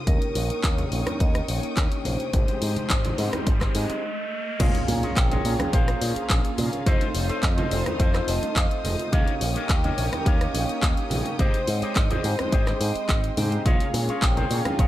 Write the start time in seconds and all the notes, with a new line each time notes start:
Already playing: D#6
0.06 D#2 A#3 C#4 D#4 G4 A#4 C#5 G5 C#6, kick, closed hi-hat, riser, high conga
0.22 closed hi-hat
0.35 A#1, open hi-hat, high bongo
0.50 muted picked electric bass stroke, closed hi-hat
0.64 D#2 C#5, kick, clap, closed hi-hat, high bongo
0.78 closed hi-hat, high conga, low conga
0.91 A#1 A#3 C#4 D#4 G4 C#5, open hi-hat
1.05 A#3 C#4 D#4 G4 C#5, cross-stick, closed hi-hat, high bongo, low conga
1.20 D#2 D#5, kick, closed hi-hat
1.34 cross-stick, closed hi-hat, high bongo
1.48 A#1 C#5, open hi-hat
1.63 closed hi-hat
1.77 D#2, kick, clap, closed hi-hat, high bongo
1.92 closed hi-hat
2.05 A#1 C5, open hi-hat, high bongo, high conga
2.20 closed hi-hat
2.33 G#1 G#3 C4 D#4 G4 C5 C6, kick, closed hi-hat, high conga
2.48 closed hi-hat, high bongo
2.62 G#2, open hi-hat
2.76 muted picked electric bass stroke, closed hi-hat, high bongo, high conga
2.90 G#1, kick, clap, closed hi-hat
3.05 closed hi-hat, high conga, low conga
3.18 G#2 G#3 C4 D#4 G4 C5, open hi-hat, high bongo
3.33 G#3 C4 D#4 G4 C5, cross-stick, closed hi-hat, low conga
3.46 G#1, kick, closed hi-hat, high bongo
3.61 kick, cross-stick, clap, closed hi-hat
3.75 G#2 D#5, open hi-hat
3.90 muted picked electric bass stroke, closed hi-hat, high bongo
4.59 A#1 A#3 C#4 F4 G#4 A#4 C#5 F5 A#5, kick, closed hi-hat, crash, high bongo, impact, high conga, cabasa
4.75 closed hi-hat
4.88 A#2, open hi-hat, high bongo, cabasa
5.03 F4 G#4 A#4 C#5, muted picked electric bass stroke, closed hi-hat, cabasa
5.17 A#1 G5, kick, clap, closed hi-hat, cabasa
5.31 F4 G#4 A#4 C#5, closed hi-hat, high bongo, high conga, low conga
5.45 A#2 A#3 C#4 F4 G#4 C#5, open hi-hat, cabasa
5.59 A#3 C#4 F4 G#4, cross-stick, closed hi-hat, high bongo, low conga, cabasa
5.73 A#1 F4 G#4 A#4 C5 F5, kick, closed hi-hat, cabasa
5.88 cross-stick, closed hi-hat
6.01 A#2, open hi-hat, high bongo, cabasa
6.16 muted picked electric bass stroke, closed hi-hat, cabasa
6.30 A#1, kick, clap, closed hi-hat, high bongo, cabasa
6.45 closed hi-hat
6.58 A#2, open hi-hat, high conga, low conga, cabasa
6.73 closed hi-hat, high bongo, cabasa
6.86 F2 A3 C4 D#4 F4 A4 C5 D#5 C6 D#6, kick, closed hi-hat, high conga, cabasa
7.01 closed hi-hat, high bongo
7.14 F1 C#5, open hi-hat, cabasa
7.29 F4 A4 C5 D#5, muted picked electric bass stroke, closed hi-hat, cabasa
7.43 F2 D#5, kick, clap, closed hi-hat, high bongo, cabasa
7.57 F4 A4 C5 D#5, closed hi-hat, high conga, low conga
7.71 F1 A3 C4 D#4 F4 C5, open hi-hat, high bongo, cabasa
7.85 A3 C4 D#4 F4 C5, cross-stick, closed hi-hat, low conga, cabasa
7.99 F2 F4 A4 C5 D#5, kick, closed hi-hat, cabasa
8.14 cross-stick, clap, closed hi-hat, high bongo
8.28 F1 D#5 A5, open hi-hat, cabasa
8.43 muted picked electric bass stroke, closed hi-hat, high bongo, cabasa
8.56 F2 F5, kick, clap, closed hi-hat, cabasa
8.71 closed hi-hat
8.84 F1 D#5, open hi-hat, high bongo, high conga, cabasa
8.99 closed hi-hat, cabasa
9.12 D#2 A#3 C#4 G4 A#4 C#5 D#5 F5 G5 C#6, kick, closed hi-hat, high bongo, high conga, cabasa
9.28 closed hi-hat
9.41 A#1, open hi-hat, cabasa
9.55 G4 A#4 C#5 D#5, muted picked electric bass stroke, closed hi-hat, high bongo, cabasa
9.69 D#2 G5, kick, clap, closed hi-hat
9.84 G4 A#4 C#5 D#5, closed hi-hat, high bongo, high conga, low conga
9.97 A#1 A#3 C#4 D#4 G4 C#5, open hi-hat, cabasa
10.12 A#3 C#4 D#4 G4 C#5, cross-stick, closed hi-hat, low conga, cabasa
10.26 D#2 G4 A#4 C#5 D#5 F5, kick, closed hi-hat, high bongo, cabasa
10.41 cross-stick, closed hi-hat
10.54 A#1, open hi-hat, high bongo, cabasa
10.69 closed hi-hat, cabasa
10.83 D#2, kick, clap, closed hi-hat
10.97 closed hi-hat, high bongo
11.10 A#1, open hi-hat, high conga, low conga, cabasa
11.25 closed hi-hat, high bongo, cabasa
11.39 G#1 G#3 C4 D#4 G4 G#4 C5 D#5 G5 C6, kick, closed hi-hat, high conga, cabasa
11.54 closed hi-hat
11.67 G#2 C#5, open hi-hat, high bongo, cabasa
11.82 G4 G#4 C5 D#5, muted picked electric bass stroke, closed hi-hat, cabasa
11.96 G#1 D#5, kick, clap, closed hi-hat, high bongo, cabasa
12.10 G4 G#4 C5 D#5, closed hi-hat, high conga, low conga
12.24 G#2 G#3 C4 D#4 G4 C5, open hi-hat, cabasa
12.38 G#3 C4 D#4 C5 G5, cross-stick, closed hi-hat, high bongo, low conga, cabasa
12.52 G#1 G4 G#4 C5 D#5, kick, closed hi-hat, cabasa
12.67 cross-stick, clap, closed hi-hat, high bongo
12.80 G#2 D#5, open hi-hat, cabasa
12.95 muted picked electric bass stroke, closed hi-hat, cabasa
13.09 G#1 D#5, kick, clap, closed hi-hat, high bongo, cabasa
13.24 closed hi-hat
13.37 G#2 G#3 C4 D#4 G4 C5 G5, open hi-hat, high bongo, high conga, cabasa
13.52 closed hi-hat, cabasa
13.65 A#1 A#3 C#4 F4 G#4 A#4 C#5 F5 A#5, kick, closed hi-hat, high bongo, high conga, cabasa
13.80 closed hi-hat
13.94 A#2, open hi-hat, high bongo, cabasa
14.09 F4 G#4 A#4 C#5, muted picked electric bass stroke, closed hi-hat, cabasa
14.22 A#1 G5, kick, clap, closed hi-hat, cabasa
14.37 F4 G#4 A#4 C5, closed hi-hat, high bongo, high conga, low conga
14.50 A#2 A#3 C#4 F4 G#4 C#5, open hi-hat, cabasa
14.64 A#3 C#4 F4 G#4, cross-stick, closed hi-hat, high bongo, low conga, cabasa
14.79 A#1 F4 G#4 A#4 C#5 F5, kick, closed hi-hat, cabasa